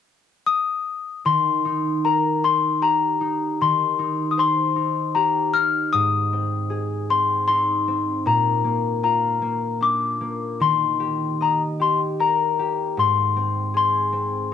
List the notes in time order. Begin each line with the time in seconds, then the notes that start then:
0.47 D#6
1.25 D#3 C6
1.65 D#4
2.05 A#4 A#5
2.44 D#4 C6
2.82 G4 A#5
3.21 D#4
3.61 D#3 C6
3.99 D#4
4.31 D#6
4.37 C5 C6
4.76 D#4
5.15 G4 A#5
5.54 D#4 F6
5.93 G#2 D#6
6.33 C4
6.70 G#4
7.10 C4 C6
7.48 D#4 C6
7.88 C4
8.26 A#2 A#5
8.64 A#3
9.03 F4 A#5
9.42 A#3
9.81 D4 D6
10.21 A#3
10.60 D#3 C6
11.00 G4
11.41 D#5 A#5
11.80 G4 C6
12.19 A#4 A#5
12.59 G4
12.97 G#2 C6
13.36 C4
13.74 G#4 C6
14.13 C4